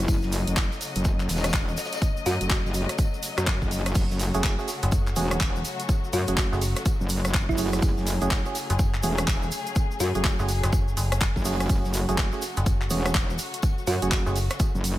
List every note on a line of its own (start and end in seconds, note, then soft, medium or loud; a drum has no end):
0.00 14.99 C#3 medium
0.00 14.99 F#3 medium
0.00 14.99 A3 medium
0.00 0.41 E4 medium
0.08 0.21 F#1 loud
0.08 3.94 D#5 medium
0.08 kick loud
0.08 closed hi-hat medium
0.08 tambourine loud
0.08 shaker medium
0.22 0.45 F#1 loud
0.22 snare soft
0.22 shaker soft
0.32 open hi-hat loud
0.32 tambourine medium
0.32 shaker medium
0.47 0.69 F#1 loud
0.47 closed hi-hat medium
0.47 closed hi-hat soft
0.47 shaker soft
0.56 kick loud
0.56 snare loud
0.56 clap loud
0.56 closed hi-hat medium
0.56 tambourine medium
0.56 shaker medium
0.71 snare medium
0.71 shaker soft
0.81 snare medium
0.81 open hi-hat medium
0.81 tambourine medium
0.81 shaker medium
0.95 1.28 F#1 loud
0.95 closed hi-hat medium
0.95 shaker soft
1.04 kick loud
1.04 closed hi-hat medium
1.04 tambourine medium
1.04 shaker soft
1.19 clap soft
1.19 shaker soft
1.29 1.76 E1 loud
1.29 snare medium
1.29 open hi-hat loud
1.29 tambourine medium
1.29 shaker medium
1.37 snare medium
1.37 tambourine medium
1.44 cross-stick medium
1.44 snare loud
1.44 closed hi-hat medium
1.44 tambourine medium
1.44 shaker soft
1.49 snare medium
1.49 tambourine medium
1.53 kick loud
1.53 snare loud
1.53 clap loud
1.53 closed hi-hat medium
1.53 tambourine medium
1.53 shaker medium
1.68 shaker soft
1.77 snare medium
1.77 open hi-hat medium
1.77 tambourine medium
1.77 shaker medium
1.85 snare medium
1.85 tambourine medium
1.92 snare medium
1.92 closed hi-hat medium
1.92 tambourine medium
1.92 shaker soft
1.97 snare medium
1.97 tambourine medium
2.02 kick loud
2.02 closed hi-hat medium
2.02 tambourine medium
2.02 shaker medium
2.17 shaker soft
2.26 2.39 F#2 loud
2.26 2.46 F#4 loud
2.26 open hi-hat loud
2.26 tambourine medium
2.26 shaker medium
2.41 2.63 F#1 loud
2.41 closed hi-hat medium
2.41 shaker soft
2.50 kick loud
2.50 snare loud
2.50 clap loud
2.50 closed hi-hat medium
2.50 tambourine medium
2.50 shaker soft
2.65 2.87 F#1 medium
2.65 snare medium
2.65 shaker soft
2.74 open hi-hat medium
2.74 tambourine medium
2.74 shaker medium
2.89 cross-stick medium
2.89 snare medium
2.89 closed hi-hat medium
2.89 shaker soft
2.98 kick loud
2.98 closed hi-hat medium
2.98 tambourine medium
2.98 shaker medium
3.14 shaker soft
3.22 open hi-hat loud
3.22 tambourine medium
3.22 shaker medium
3.38 3.59 F#2 medium
3.38 cross-stick medium
3.38 clap soft
3.38 closed hi-hat medium
3.38 shaker soft
3.47 kick loud
3.47 clap loud
3.47 closed hi-hat medium
3.47 tambourine medium
3.47 shaker medium
3.62 3.94 F#1 loud
3.62 kick medium
3.62 shaker soft
3.71 open hi-hat medium
3.71 shaker medium
3.86 cross-stick medium
3.86 closed hi-hat medium
3.86 shaker soft
3.94 4.08 F#1 loud
3.94 7.82 F#4 medium
3.94 kick loud
3.94 closed hi-hat medium
3.94 tambourine medium
3.94 crash medium
3.94 shaker medium
4.10 4.32 F#1 loud
4.10 snare soft
4.10 shaker soft
4.19 open hi-hat loud
4.19 tambourine medium
4.19 shaker medium
4.34 4.56 F#1 loud
4.34 4.54 A3 loud
4.34 4.54 C#4 medium
4.34 4.54 F#4 medium
4.34 4.54 G#4 loud
4.34 closed hi-hat soft
4.34 closed hi-hat medium
4.34 shaker soft
4.44 kick loud
4.44 snare loud
4.44 clap loud
4.44 closed hi-hat medium
4.44 tambourine medium
4.44 shaker medium
4.59 4.70 A3 medium
4.59 4.70 C#4 medium
4.59 4.70 F#4 medium
4.59 4.70 G#4 medium
4.59 snare medium
4.59 shaker soft
4.67 snare medium
4.67 open hi-hat medium
4.67 tambourine medium
4.67 shaker medium
4.83 5.15 F#1 loud
4.83 closed hi-hat medium
4.83 shaker soft
4.91 kick loud
4.91 closed hi-hat medium
4.91 tambourine medium
4.91 shaker medium
5.06 clap soft
5.06 shaker soft
5.16 5.63 E1 medium
5.16 5.39 A3 medium
5.16 5.39 C#4 medium
5.16 5.39 F#4 medium
5.16 5.39 G#4 medium
5.16 open hi-hat loud
5.16 tambourine medium
5.16 shaker medium
5.31 cross-stick medium
5.31 closed hi-hat medium
5.31 shaker soft
5.40 kick loud
5.40 snare loud
5.40 clap loud
5.40 closed hi-hat medium
5.40 tambourine medium
5.40 shaker medium
5.56 shaker soft
5.64 open hi-hat loud
5.64 tambourine medium
5.64 shaker medium
5.80 closed hi-hat medium
5.80 shaker soft
5.89 kick loud
5.89 closed hi-hat medium
5.89 tambourine medium
5.89 shaker medium
6.04 shaker soft
6.13 6.26 F#2 loud
6.13 6.33 F#4 medium
6.13 open hi-hat loud
6.13 tambourine medium
6.13 shaker loud
6.27 6.50 F#1 loud
6.27 6.49 A3 medium
6.27 6.49 C#4 medium
6.27 6.49 F#4 medium
6.27 6.49 G#4 medium
6.27 closed hi-hat medium
6.27 shaker soft
6.37 kick loud
6.37 snare loud
6.37 clap loud
6.37 closed hi-hat medium
6.37 tambourine medium
6.37 shaker medium
6.52 6.74 F#1 loud
6.52 6.64 A3 loud
6.52 6.64 C#4 medium
6.52 6.64 F#4 medium
6.52 6.64 G#4 loud
6.52 snare medium
6.52 shaker soft
6.61 open hi-hat loud
6.61 tambourine medium
6.61 shaker medium
6.76 cross-stick medium
6.76 snare medium
6.76 closed hi-hat medium
6.76 shaker soft
6.85 kick loud
6.85 closed hi-hat medium
6.85 tambourine medium
6.85 shaker medium
7.01 7.47 F#1 loud
7.01 shaker soft
7.09 open hi-hat loud
7.09 tambourine medium
7.09 shaker loud
7.25 cross-stick medium
7.25 closed hi-hat medium
7.25 closed hi-hat soft
7.25 shaker soft
7.33 kick loud
7.33 snare loud
7.33 clap loud
7.33 closed hi-hat medium
7.33 tambourine medium
7.33 shaker medium
7.49 7.81 F#1 loud
7.49 8.16 E4 medium
7.49 kick medium
7.49 shaker soft
7.58 8.18 A3 medium
7.58 8.18 C#4 medium
7.58 8.18 F#4 medium
7.58 8.18 G#4 medium
7.58 open hi-hat medium
7.58 open hi-hat loud
7.58 shaker medium
7.73 cross-stick medium
7.73 closed hi-hat medium
7.73 shaker soft
7.82 7.95 F#1 loud
7.82 11.69 G#4 medium
7.82 kick loud
7.82 closed hi-hat medium
7.82 tambourine medium
7.82 shaker medium
7.97 8.19 F#1 loud
7.97 snare soft
7.97 shaker soft
8.06 open hi-hat loud
8.06 tambourine medium
8.06 shaker loud
8.21 8.43 F#1 loud
8.21 8.41 A3 loud
8.21 8.41 C#4 medium
8.21 8.41 F#4 medium
8.21 8.41 G#4 loud
8.21 closed hi-hat soft
8.21 closed hi-hat medium
8.21 shaker soft
8.30 kick loud
8.30 snare loud
8.30 clap loud
8.30 closed hi-hat soft
8.30 tambourine loud
8.30 shaker soft
8.45 8.57 A3 medium
8.45 8.57 C#4 medium
8.45 8.57 F#4 medium
8.45 8.57 G#4 medium
8.45 snare medium
8.45 shaker soft
8.55 snare medium
8.55 open hi-hat loud
8.55 tambourine medium
8.55 shaker loud
8.70 9.02 F#1 loud
8.70 closed hi-hat medium
8.70 shaker soft
8.79 kick loud
8.79 closed hi-hat medium
8.79 tambourine medium
8.79 shaker medium
8.94 clap soft
8.94 shaker soft
9.03 9.50 E1 loud
9.03 9.26 A3 medium
9.03 9.26 C#4 medium
9.03 9.26 F#4 medium
9.03 9.26 G#4 medium
9.03 open hi-hat loud
9.03 shaker loud
9.18 cross-stick medium
9.18 closed hi-hat medium
9.18 shaker soft
9.28 kick loud
9.28 snare loud
9.28 clap loud
9.28 closed hi-hat medium
9.28 tambourine medium
9.28 shaker medium
9.42 shaker soft
9.51 open hi-hat loud
9.51 tambourine medium
9.51 shaker medium
9.67 closed hi-hat medium
9.67 shaker soft
9.75 kick loud
9.75 closed hi-hat medium
9.75 tambourine medium
9.75 shaker medium
9.91 shaker soft
10.00 10.13 F#2 loud
10.00 10.20 F#4 medium
10.00 open hi-hat loud
10.00 tambourine medium
10.00 shaker loud
10.15 10.37 F#1 loud
10.15 10.36 A3 medium
10.15 10.36 C#4 medium
10.15 10.36 F#4 medium
10.15 10.36 G#4 medium
10.15 closed hi-hat medium
10.15 shaker soft
10.24 kick loud
10.24 snare loud
10.24 clap loud
10.24 closed hi-hat medium
10.24 tambourine medium
10.24 shaker medium
10.39 10.61 F#1 loud
10.39 10.51 A3 medium
10.39 10.51 C#4 medium
10.39 10.51 F#4 medium
10.39 10.51 G#4 loud
10.39 snare medium
10.39 shaker soft
10.48 open hi-hat medium
10.48 tambourine medium
10.48 shaker medium
10.63 10.95 F#1 loud
10.63 cross-stick medium
10.63 snare medium
10.63 closed hi-hat medium
10.63 shaker soft
10.72 kick loud
10.72 closed hi-hat soft
10.72 tambourine loud
10.72 shaker medium
10.88 shaker soft
10.97 11.34 F#1 medium
10.97 open hi-hat loud
10.97 tambourine medium
10.97 shaker medium
11.12 cross-stick medium
11.12 closed hi-hat medium
11.12 closed hi-hat soft
11.12 shaker soft
11.21 kick loud
11.21 snare loud
11.21 clap loud
11.21 closed hi-hat medium
11.21 tambourine medium
11.21 shaker medium
11.36 11.68 F#1 loud
11.36 kick medium
11.36 shaker soft
11.45 12.05 A3 medium
11.45 12.05 C#4 medium
11.45 12.05 F#4 medium
11.45 12.05 G#4 medium
11.45 open hi-hat loud
11.45 open hi-hat medium
11.45 shaker loud
11.60 cross-stick medium
11.60 closed hi-hat medium
11.60 shaker soft
11.69 11.82 F#1 loud
11.69 14.99 F#4 medium
11.69 kick loud
11.69 closed hi-hat medium
11.69 tambourine medium
11.69 shaker soft
11.84 12.06 F#1 loud
11.84 snare soft
11.84 shaker soft
11.94 open hi-hat loud
11.94 tambourine medium
11.94 shaker medium
12.09 12.30 F#1 loud
12.09 12.28 A3 loud
12.09 12.28 C#4 medium
12.09 12.28 F#4 medium
12.09 12.28 G#4 loud
12.09 closed hi-hat soft
12.09 closed hi-hat medium
12.09 shaker soft
12.17 kick loud
12.17 snare loud
12.17 clap loud
12.17 closed hi-hat medium
12.17 tambourine medium
12.17 shaker soft
12.32 12.44 A3 medium
12.32 12.44 C#4 medium
12.32 12.44 F#4 medium
12.32 12.44 G#4 medium
12.32 snare medium
12.32 shaker soft
12.42 snare medium
12.42 open hi-hat medium
12.42 tambourine medium
12.42 shaker loud
12.57 12.89 F#1 medium
12.57 closed hi-hat medium
12.57 shaker soft
12.66 kick loud
12.66 closed hi-hat soft
12.66 tambourine medium
12.66 shaker medium
12.81 clap soft
12.81 shaker soft
12.90 13.37 E1 loud
12.90 13.13 A3 medium
12.90 13.13 C#4 medium
12.90 13.13 F#4 medium
12.90 13.13 G#4 medium
12.90 open hi-hat loud
12.90 tambourine medium
12.90 shaker loud
13.06 cross-stick medium
13.06 closed hi-hat medium
13.06 shaker soft
13.14 kick loud
13.14 snare loud
13.14 clap loud
13.14 closed hi-hat soft
13.14 tambourine medium
13.14 shaker medium
13.30 shaker soft
13.38 open hi-hat loud
13.38 tambourine medium
13.38 shaker loud
13.54 closed hi-hat medium
13.54 shaker soft
13.62 kick loud
13.62 closed hi-hat medium
13.62 tambourine medium
13.62 shaker soft
13.78 shaker soft
13.87 14.00 F#2 loud
13.87 14.07 F#4 medium
13.87 open hi-hat loud
13.87 tambourine medium
13.87 shaker medium
14.02 14.24 F#1 loud
14.02 14.23 A3 medium
14.02 14.23 C#4 medium
14.02 14.23 F#4 medium
14.02 14.23 G#4 medium
14.02 closed hi-hat medium
14.02 shaker soft
14.11 kick loud
14.11 snare loud
14.11 clap loud
14.11 closed hi-hat medium
14.11 tambourine medium
14.11 shaker soft
14.26 14.48 F#1 loud
14.26 14.38 A3 loud
14.26 14.38 C#4 medium
14.26 14.38 F#4 medium
14.26 14.38 G#4 loud
14.26 snare soft
14.26 shaker soft
14.36 open hi-hat medium
14.36 tambourine medium
14.36 shaker loud
14.50 cross-stick medium
14.50 snare medium
14.50 closed hi-hat medium
14.50 shaker soft
14.59 kick loud
14.59 closed hi-hat soft
14.59 tambourine medium
14.59 shaker medium
14.75 14.99 F#1 loud
14.75 shaker soft
14.84 open hi-hat loud
14.84 tambourine medium
14.84 shaker medium